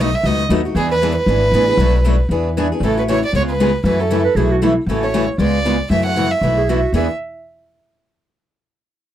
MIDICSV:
0, 0, Header, 1, 6, 480
1, 0, Start_track
1, 0, Tempo, 257843
1, 1402, Time_signature, 4, 2, 24, 8
1, 17022, End_track
2, 0, Start_track
2, 0, Title_t, "Violin"
2, 0, Program_c, 0, 40
2, 17, Note_on_c, 0, 75, 93
2, 273, Note_on_c, 0, 76, 94
2, 301, Note_off_c, 0, 75, 0
2, 486, Note_on_c, 0, 75, 99
2, 513, Note_off_c, 0, 76, 0
2, 733, Note_off_c, 0, 75, 0
2, 1411, Note_on_c, 0, 68, 98
2, 1657, Note_off_c, 0, 68, 0
2, 1697, Note_on_c, 0, 71, 101
2, 2131, Note_off_c, 0, 71, 0
2, 2148, Note_on_c, 0, 71, 108
2, 4685, Note_off_c, 0, 71, 0
2, 5290, Note_on_c, 0, 69, 84
2, 5516, Note_off_c, 0, 69, 0
2, 5557, Note_on_c, 0, 71, 81
2, 5641, Note_off_c, 0, 71, 0
2, 5765, Note_on_c, 0, 73, 85
2, 5994, Note_off_c, 0, 73, 0
2, 6047, Note_on_c, 0, 74, 90
2, 6216, Note_off_c, 0, 74, 0
2, 6256, Note_on_c, 0, 73, 104
2, 6364, Note_off_c, 0, 73, 0
2, 6523, Note_on_c, 0, 71, 89
2, 7140, Note_off_c, 0, 71, 0
2, 7182, Note_on_c, 0, 71, 84
2, 7449, Note_on_c, 0, 69, 83
2, 7477, Note_off_c, 0, 71, 0
2, 8398, Note_off_c, 0, 69, 0
2, 9109, Note_on_c, 0, 69, 76
2, 9377, Note_on_c, 0, 73, 86
2, 9405, Note_off_c, 0, 69, 0
2, 9842, Note_off_c, 0, 73, 0
2, 10060, Note_on_c, 0, 74, 96
2, 10943, Note_off_c, 0, 74, 0
2, 11011, Note_on_c, 0, 76, 96
2, 11255, Note_off_c, 0, 76, 0
2, 11282, Note_on_c, 0, 78, 99
2, 11747, Note_on_c, 0, 76, 83
2, 11775, Note_off_c, 0, 78, 0
2, 12708, Note_off_c, 0, 76, 0
2, 12960, Note_on_c, 0, 76, 73
2, 13191, Note_off_c, 0, 76, 0
2, 17022, End_track
3, 0, Start_track
3, 0, Title_t, "Steel-string acoustic guitar"
3, 0, Program_c, 1, 25
3, 458, Note_on_c, 1, 71, 68
3, 787, Note_off_c, 1, 71, 0
3, 953, Note_on_c, 1, 71, 101
3, 1126, Note_off_c, 1, 71, 0
3, 1430, Note_on_c, 1, 71, 80
3, 1753, Note_off_c, 1, 71, 0
3, 1914, Note_on_c, 1, 71, 93
3, 2086, Note_off_c, 1, 71, 0
3, 2391, Note_on_c, 1, 71, 61
3, 2713, Note_off_c, 1, 71, 0
3, 2885, Note_on_c, 1, 71, 86
3, 3051, Note_off_c, 1, 71, 0
3, 3377, Note_on_c, 1, 71, 76
3, 3685, Note_off_c, 1, 71, 0
3, 3825, Note_on_c, 1, 71, 91
3, 4001, Note_off_c, 1, 71, 0
3, 4322, Note_on_c, 1, 71, 70
3, 4638, Note_off_c, 1, 71, 0
3, 4808, Note_on_c, 1, 71, 90
3, 4972, Note_off_c, 1, 71, 0
3, 5293, Note_on_c, 1, 69, 74
3, 5603, Note_off_c, 1, 69, 0
3, 5770, Note_on_c, 1, 69, 77
3, 5933, Note_off_c, 1, 69, 0
3, 7173, Note_on_c, 1, 54, 64
3, 7193, Note_on_c, 1, 64, 65
3, 7198, Note_on_c, 1, 69, 80
3, 7503, Note_off_c, 1, 54, 0
3, 7512, Note_off_c, 1, 64, 0
3, 7515, Note_off_c, 1, 69, 0
3, 7671, Note_on_c, 1, 54, 75
3, 7688, Note_on_c, 1, 64, 97
3, 7694, Note_on_c, 1, 69, 93
3, 7843, Note_off_c, 1, 54, 0
3, 7851, Note_off_c, 1, 64, 0
3, 7854, Note_off_c, 1, 69, 0
3, 8147, Note_on_c, 1, 71, 66
3, 8470, Note_off_c, 1, 71, 0
3, 8617, Note_on_c, 1, 71, 88
3, 8796, Note_off_c, 1, 71, 0
3, 9111, Note_on_c, 1, 69, 74
3, 9431, Note_off_c, 1, 69, 0
3, 9586, Note_on_c, 1, 69, 87
3, 9760, Note_off_c, 1, 69, 0
3, 10995, Note_on_c, 1, 54, 71
3, 11016, Note_on_c, 1, 64, 66
3, 11020, Note_on_c, 1, 69, 78
3, 11334, Note_off_c, 1, 54, 0
3, 11344, Note_off_c, 1, 64, 0
3, 11346, Note_off_c, 1, 69, 0
3, 11469, Note_on_c, 1, 54, 69
3, 11493, Note_on_c, 1, 64, 80
3, 11496, Note_on_c, 1, 69, 85
3, 11662, Note_off_c, 1, 54, 0
3, 11674, Note_off_c, 1, 64, 0
3, 11676, Note_off_c, 1, 69, 0
3, 11983, Note_on_c, 1, 71, 62
3, 12308, Note_off_c, 1, 71, 0
3, 12488, Note_on_c, 1, 71, 78
3, 12652, Note_off_c, 1, 71, 0
3, 12972, Note_on_c, 1, 71, 82
3, 13161, Note_off_c, 1, 71, 0
3, 17022, End_track
4, 0, Start_track
4, 0, Title_t, "Clarinet"
4, 0, Program_c, 2, 71
4, 7899, Note_on_c, 2, 71, 99
4, 8118, Note_on_c, 2, 68, 85
4, 8146, Note_off_c, 2, 71, 0
4, 8409, Note_on_c, 2, 66, 84
4, 8437, Note_off_c, 2, 68, 0
4, 8605, Note_off_c, 2, 66, 0
4, 8616, Note_on_c, 2, 64, 68
4, 8957, Note_off_c, 2, 64, 0
4, 12230, Note_on_c, 2, 68, 88
4, 12462, Note_on_c, 2, 66, 83
4, 12490, Note_off_c, 2, 68, 0
4, 12917, Note_off_c, 2, 66, 0
4, 12928, Note_on_c, 2, 68, 69
4, 13174, Note_off_c, 2, 68, 0
4, 17022, End_track
5, 0, Start_track
5, 0, Title_t, "Steel-string acoustic guitar"
5, 0, Program_c, 3, 25
5, 6, Note_on_c, 3, 47, 82
5, 8, Note_on_c, 3, 54, 82
5, 16, Note_on_c, 3, 57, 90
5, 17, Note_on_c, 3, 63, 87
5, 19, Note_on_c, 3, 66, 91
5, 172, Note_off_c, 3, 47, 0
5, 173, Note_off_c, 3, 54, 0
5, 177, Note_off_c, 3, 57, 0
5, 178, Note_off_c, 3, 63, 0
5, 179, Note_off_c, 3, 66, 0
5, 472, Note_on_c, 3, 47, 64
5, 482, Note_on_c, 3, 54, 58
5, 489, Note_on_c, 3, 57, 66
5, 492, Note_on_c, 3, 63, 67
5, 508, Note_on_c, 3, 66, 75
5, 794, Note_off_c, 3, 47, 0
5, 799, Note_off_c, 3, 54, 0
5, 802, Note_off_c, 3, 57, 0
5, 804, Note_off_c, 3, 63, 0
5, 812, Note_off_c, 3, 66, 0
5, 936, Note_on_c, 3, 47, 84
5, 936, Note_on_c, 3, 54, 80
5, 938, Note_on_c, 3, 57, 90
5, 952, Note_on_c, 3, 63, 98
5, 955, Note_on_c, 3, 66, 91
5, 1117, Note_off_c, 3, 47, 0
5, 1117, Note_off_c, 3, 54, 0
5, 1118, Note_off_c, 3, 57, 0
5, 1125, Note_off_c, 3, 63, 0
5, 1127, Note_off_c, 3, 66, 0
5, 1212, Note_on_c, 3, 66, 51
5, 1231, Note_on_c, 3, 63, 51
5, 1248, Note_on_c, 3, 57, 45
5, 1404, Note_off_c, 3, 66, 0
5, 1414, Note_off_c, 3, 63, 0
5, 1418, Note_on_c, 3, 52, 68
5, 1421, Note_off_c, 3, 57, 0
5, 1426, Note_on_c, 3, 62, 71
5, 1428, Note_on_c, 3, 59, 78
5, 1437, Note_on_c, 3, 68, 66
5, 1747, Note_off_c, 3, 52, 0
5, 1750, Note_off_c, 3, 62, 0
5, 1752, Note_off_c, 3, 59, 0
5, 1756, Note_off_c, 3, 68, 0
5, 1897, Note_on_c, 3, 52, 84
5, 1906, Note_on_c, 3, 59, 78
5, 1916, Note_on_c, 3, 62, 96
5, 1917, Note_on_c, 3, 68, 88
5, 2078, Note_off_c, 3, 52, 0
5, 2082, Note_off_c, 3, 59, 0
5, 2087, Note_off_c, 3, 62, 0
5, 2088, Note_off_c, 3, 68, 0
5, 2384, Note_on_c, 3, 52, 60
5, 2385, Note_on_c, 3, 59, 59
5, 2391, Note_on_c, 3, 62, 66
5, 2404, Note_on_c, 3, 68, 68
5, 2709, Note_off_c, 3, 52, 0
5, 2710, Note_off_c, 3, 59, 0
5, 2713, Note_off_c, 3, 62, 0
5, 2719, Note_off_c, 3, 68, 0
5, 2858, Note_on_c, 3, 52, 80
5, 2864, Note_on_c, 3, 59, 79
5, 2876, Note_on_c, 3, 62, 91
5, 2886, Note_on_c, 3, 68, 85
5, 3038, Note_off_c, 3, 52, 0
5, 3041, Note_off_c, 3, 59, 0
5, 3047, Note_off_c, 3, 62, 0
5, 3052, Note_off_c, 3, 68, 0
5, 3129, Note_on_c, 3, 68, 54
5, 3142, Note_on_c, 3, 62, 49
5, 3162, Note_on_c, 3, 59, 41
5, 3322, Note_off_c, 3, 68, 0
5, 3329, Note_off_c, 3, 62, 0
5, 3334, Note_on_c, 3, 47, 70
5, 3339, Note_off_c, 3, 59, 0
5, 3345, Note_on_c, 3, 54, 67
5, 3350, Note_on_c, 3, 62, 64
5, 3351, Note_on_c, 3, 57, 75
5, 3354, Note_on_c, 3, 66, 76
5, 3664, Note_off_c, 3, 47, 0
5, 3669, Note_off_c, 3, 54, 0
5, 3672, Note_off_c, 3, 57, 0
5, 3672, Note_off_c, 3, 62, 0
5, 3674, Note_off_c, 3, 66, 0
5, 3809, Note_on_c, 3, 47, 82
5, 3821, Note_on_c, 3, 57, 87
5, 3824, Note_on_c, 3, 54, 80
5, 3829, Note_on_c, 3, 62, 91
5, 3835, Note_on_c, 3, 66, 100
5, 3993, Note_off_c, 3, 47, 0
5, 3999, Note_off_c, 3, 57, 0
5, 4000, Note_off_c, 3, 54, 0
5, 4003, Note_off_c, 3, 62, 0
5, 4006, Note_off_c, 3, 66, 0
5, 4298, Note_on_c, 3, 52, 56
5, 4301, Note_on_c, 3, 59, 66
5, 4306, Note_on_c, 3, 68, 67
5, 4307, Note_on_c, 3, 62, 72
5, 4626, Note_off_c, 3, 52, 0
5, 4627, Note_off_c, 3, 59, 0
5, 4629, Note_off_c, 3, 68, 0
5, 4630, Note_off_c, 3, 62, 0
5, 4785, Note_on_c, 3, 52, 74
5, 4792, Note_on_c, 3, 59, 79
5, 4801, Note_on_c, 3, 62, 89
5, 4804, Note_on_c, 3, 68, 86
5, 4960, Note_off_c, 3, 52, 0
5, 4964, Note_off_c, 3, 59, 0
5, 4969, Note_off_c, 3, 62, 0
5, 4970, Note_off_c, 3, 68, 0
5, 5061, Note_on_c, 3, 68, 53
5, 5074, Note_on_c, 3, 62, 46
5, 5091, Note_on_c, 3, 59, 39
5, 5248, Note_off_c, 3, 68, 0
5, 5254, Note_off_c, 3, 62, 0
5, 5263, Note_off_c, 3, 59, 0
5, 5267, Note_on_c, 3, 49, 62
5, 5272, Note_on_c, 3, 52, 61
5, 5278, Note_on_c, 3, 57, 68
5, 5279, Note_on_c, 3, 61, 70
5, 5292, Note_on_c, 3, 66, 62
5, 5509, Note_off_c, 3, 66, 0
5, 5512, Note_off_c, 3, 49, 0
5, 5514, Note_off_c, 3, 52, 0
5, 5517, Note_off_c, 3, 57, 0
5, 5518, Note_off_c, 3, 61, 0
5, 5532, Note_on_c, 3, 66, 52
5, 5541, Note_on_c, 3, 61, 47
5, 5571, Note_on_c, 3, 57, 44
5, 5723, Note_off_c, 3, 66, 0
5, 5728, Note_off_c, 3, 61, 0
5, 5732, Note_off_c, 3, 57, 0
5, 5742, Note_on_c, 3, 52, 91
5, 5744, Note_on_c, 3, 49, 77
5, 5754, Note_on_c, 3, 57, 82
5, 5757, Note_on_c, 3, 61, 87
5, 5760, Note_on_c, 3, 66, 91
5, 5919, Note_off_c, 3, 52, 0
5, 5920, Note_off_c, 3, 49, 0
5, 5925, Note_off_c, 3, 57, 0
5, 5926, Note_off_c, 3, 61, 0
5, 5928, Note_off_c, 3, 66, 0
5, 6225, Note_on_c, 3, 49, 62
5, 6233, Note_on_c, 3, 56, 66
5, 6234, Note_on_c, 3, 59, 63
5, 6235, Note_on_c, 3, 68, 68
5, 6246, Note_on_c, 3, 65, 69
5, 6549, Note_off_c, 3, 49, 0
5, 6552, Note_off_c, 3, 56, 0
5, 6554, Note_off_c, 3, 59, 0
5, 6554, Note_off_c, 3, 68, 0
5, 6559, Note_off_c, 3, 65, 0
5, 6704, Note_on_c, 3, 56, 85
5, 6705, Note_on_c, 3, 59, 90
5, 6707, Note_on_c, 3, 49, 80
5, 6716, Note_on_c, 3, 65, 84
5, 6724, Note_on_c, 3, 68, 86
5, 6880, Note_off_c, 3, 56, 0
5, 6880, Note_off_c, 3, 59, 0
5, 6881, Note_off_c, 3, 49, 0
5, 6886, Note_off_c, 3, 65, 0
5, 6890, Note_off_c, 3, 68, 0
5, 7172, Note_on_c, 3, 57, 68
5, 7173, Note_on_c, 3, 52, 68
5, 7174, Note_on_c, 3, 49, 60
5, 7183, Note_on_c, 3, 61, 67
5, 7188, Note_on_c, 3, 66, 70
5, 7419, Note_off_c, 3, 66, 0
5, 7424, Note_off_c, 3, 52, 0
5, 7424, Note_off_c, 3, 57, 0
5, 7425, Note_off_c, 3, 49, 0
5, 7429, Note_off_c, 3, 61, 0
5, 7441, Note_on_c, 3, 66, 51
5, 7463, Note_on_c, 3, 61, 50
5, 7479, Note_on_c, 3, 57, 39
5, 7635, Note_off_c, 3, 61, 0
5, 7637, Note_off_c, 3, 66, 0
5, 7638, Note_off_c, 3, 57, 0
5, 7642, Note_on_c, 3, 49, 75
5, 7647, Note_on_c, 3, 52, 91
5, 7657, Note_on_c, 3, 61, 86
5, 7660, Note_on_c, 3, 57, 90
5, 7661, Note_on_c, 3, 66, 86
5, 7829, Note_off_c, 3, 49, 0
5, 7831, Note_off_c, 3, 52, 0
5, 7836, Note_off_c, 3, 61, 0
5, 7838, Note_off_c, 3, 57, 0
5, 7838, Note_off_c, 3, 66, 0
5, 8124, Note_on_c, 3, 47, 56
5, 8134, Note_on_c, 3, 57, 69
5, 8136, Note_on_c, 3, 52, 64
5, 8142, Note_on_c, 3, 66, 70
5, 8144, Note_on_c, 3, 64, 66
5, 8458, Note_off_c, 3, 47, 0
5, 8463, Note_off_c, 3, 57, 0
5, 8464, Note_off_c, 3, 52, 0
5, 8467, Note_off_c, 3, 66, 0
5, 8468, Note_off_c, 3, 64, 0
5, 8596, Note_on_c, 3, 47, 72
5, 8604, Note_on_c, 3, 52, 89
5, 8615, Note_on_c, 3, 57, 91
5, 8615, Note_on_c, 3, 64, 84
5, 8623, Note_on_c, 3, 66, 78
5, 8785, Note_off_c, 3, 47, 0
5, 8790, Note_off_c, 3, 52, 0
5, 8795, Note_off_c, 3, 57, 0
5, 8795, Note_off_c, 3, 64, 0
5, 8799, Note_off_c, 3, 66, 0
5, 9100, Note_on_c, 3, 49, 64
5, 9113, Note_on_c, 3, 52, 67
5, 9115, Note_on_c, 3, 57, 66
5, 9115, Note_on_c, 3, 61, 72
5, 9121, Note_on_c, 3, 66, 72
5, 9339, Note_off_c, 3, 66, 0
5, 9347, Note_off_c, 3, 49, 0
5, 9354, Note_off_c, 3, 52, 0
5, 9355, Note_off_c, 3, 57, 0
5, 9355, Note_off_c, 3, 61, 0
5, 9361, Note_on_c, 3, 66, 51
5, 9386, Note_on_c, 3, 61, 49
5, 9404, Note_on_c, 3, 57, 45
5, 9549, Note_off_c, 3, 57, 0
5, 9557, Note_off_c, 3, 66, 0
5, 9560, Note_off_c, 3, 61, 0
5, 9567, Note_on_c, 3, 49, 83
5, 9567, Note_on_c, 3, 52, 87
5, 9572, Note_on_c, 3, 57, 90
5, 9582, Note_on_c, 3, 61, 90
5, 9586, Note_on_c, 3, 66, 88
5, 9751, Note_off_c, 3, 49, 0
5, 9751, Note_off_c, 3, 52, 0
5, 9753, Note_off_c, 3, 57, 0
5, 9758, Note_off_c, 3, 61, 0
5, 9761, Note_off_c, 3, 66, 0
5, 10041, Note_on_c, 3, 56, 64
5, 10045, Note_on_c, 3, 49, 63
5, 10051, Note_on_c, 3, 59, 67
5, 10054, Note_on_c, 3, 68, 69
5, 10056, Note_on_c, 3, 65, 62
5, 10376, Note_off_c, 3, 56, 0
5, 10379, Note_off_c, 3, 49, 0
5, 10382, Note_off_c, 3, 59, 0
5, 10383, Note_off_c, 3, 68, 0
5, 10384, Note_off_c, 3, 65, 0
5, 10525, Note_on_c, 3, 49, 78
5, 10530, Note_on_c, 3, 56, 80
5, 10536, Note_on_c, 3, 59, 84
5, 10545, Note_on_c, 3, 68, 82
5, 10547, Note_on_c, 3, 65, 82
5, 10710, Note_off_c, 3, 49, 0
5, 10712, Note_off_c, 3, 56, 0
5, 10716, Note_off_c, 3, 59, 0
5, 10720, Note_off_c, 3, 68, 0
5, 10721, Note_off_c, 3, 65, 0
5, 10999, Note_on_c, 3, 49, 65
5, 11003, Note_on_c, 3, 52, 58
5, 11008, Note_on_c, 3, 57, 66
5, 11018, Note_on_c, 3, 61, 66
5, 11018, Note_on_c, 3, 66, 63
5, 11248, Note_off_c, 3, 66, 0
5, 11257, Note_off_c, 3, 49, 0
5, 11259, Note_off_c, 3, 52, 0
5, 11262, Note_off_c, 3, 57, 0
5, 11263, Note_off_c, 3, 61, 0
5, 11270, Note_on_c, 3, 66, 53
5, 11285, Note_on_c, 3, 61, 43
5, 11304, Note_on_c, 3, 57, 43
5, 11464, Note_off_c, 3, 66, 0
5, 11466, Note_off_c, 3, 57, 0
5, 11468, Note_on_c, 3, 49, 83
5, 11469, Note_off_c, 3, 61, 0
5, 11471, Note_on_c, 3, 52, 80
5, 11486, Note_on_c, 3, 66, 93
5, 11488, Note_on_c, 3, 57, 83
5, 11491, Note_on_c, 3, 61, 79
5, 11662, Note_off_c, 3, 49, 0
5, 11663, Note_off_c, 3, 52, 0
5, 11671, Note_off_c, 3, 66, 0
5, 11672, Note_off_c, 3, 57, 0
5, 11673, Note_off_c, 3, 61, 0
5, 11966, Note_on_c, 3, 47, 62
5, 11974, Note_on_c, 3, 57, 61
5, 11977, Note_on_c, 3, 52, 58
5, 11978, Note_on_c, 3, 64, 64
5, 11999, Note_on_c, 3, 66, 64
5, 12299, Note_off_c, 3, 47, 0
5, 12303, Note_off_c, 3, 57, 0
5, 12305, Note_off_c, 3, 52, 0
5, 12306, Note_off_c, 3, 64, 0
5, 12316, Note_off_c, 3, 66, 0
5, 12455, Note_on_c, 3, 47, 75
5, 12459, Note_on_c, 3, 52, 81
5, 12464, Note_on_c, 3, 64, 76
5, 12471, Note_on_c, 3, 57, 70
5, 12471, Note_on_c, 3, 66, 76
5, 12635, Note_off_c, 3, 47, 0
5, 12637, Note_off_c, 3, 52, 0
5, 12640, Note_off_c, 3, 64, 0
5, 12643, Note_off_c, 3, 57, 0
5, 12643, Note_off_c, 3, 66, 0
5, 12914, Note_on_c, 3, 52, 80
5, 12921, Note_on_c, 3, 59, 80
5, 12930, Note_on_c, 3, 62, 74
5, 12944, Note_on_c, 3, 68, 89
5, 13132, Note_off_c, 3, 52, 0
5, 13135, Note_off_c, 3, 59, 0
5, 13140, Note_off_c, 3, 62, 0
5, 13147, Note_off_c, 3, 68, 0
5, 17022, End_track
6, 0, Start_track
6, 0, Title_t, "Upright bass"
6, 0, Program_c, 4, 32
6, 0, Note_on_c, 4, 35, 88
6, 240, Note_off_c, 4, 35, 0
6, 436, Note_on_c, 4, 37, 78
6, 847, Note_off_c, 4, 37, 0
6, 919, Note_on_c, 4, 39, 79
6, 1328, Note_off_c, 4, 39, 0
6, 1392, Note_on_c, 4, 40, 92
6, 2164, Note_off_c, 4, 40, 0
6, 2353, Note_on_c, 4, 32, 76
6, 2765, Note_off_c, 4, 32, 0
6, 2822, Note_on_c, 4, 33, 84
6, 3238, Note_off_c, 4, 33, 0
6, 3302, Note_on_c, 4, 35, 95
6, 4077, Note_off_c, 4, 35, 0
6, 4257, Note_on_c, 4, 40, 82
6, 5034, Note_off_c, 4, 40, 0
6, 5217, Note_on_c, 4, 33, 88
6, 5994, Note_off_c, 4, 33, 0
6, 6196, Note_on_c, 4, 37, 79
6, 6965, Note_off_c, 4, 37, 0
6, 7142, Note_on_c, 4, 42, 93
6, 7917, Note_off_c, 4, 42, 0
6, 8096, Note_on_c, 4, 35, 78
6, 8873, Note_off_c, 4, 35, 0
6, 9056, Note_on_c, 4, 33, 88
6, 9833, Note_off_c, 4, 33, 0
6, 10020, Note_on_c, 4, 37, 81
6, 10796, Note_off_c, 4, 37, 0
6, 10980, Note_on_c, 4, 42, 85
6, 11756, Note_off_c, 4, 42, 0
6, 11941, Note_on_c, 4, 35, 83
6, 12717, Note_off_c, 4, 35, 0
6, 12892, Note_on_c, 4, 40, 79
6, 13155, Note_off_c, 4, 40, 0
6, 17022, End_track
0, 0, End_of_file